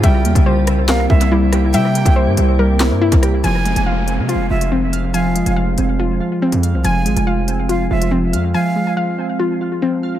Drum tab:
HH |x-xx--x-x--x--x-|x-xx--x------xx-|x-xx--x-x--x--x-|x-xx--x------xx-|
CP |--------x-------|----------x-----|----------------|----------------|
SD |------r-o-----r-|----------o---r-|----------------|----------------|
BD |o--o------o-----|---o---------o--|----------------|----------------|

HH |x-xx--x-x--x--x-|----------------|
CP |----------------|----------------|
SD |----------------|----------------|
BD |----------------|----------------|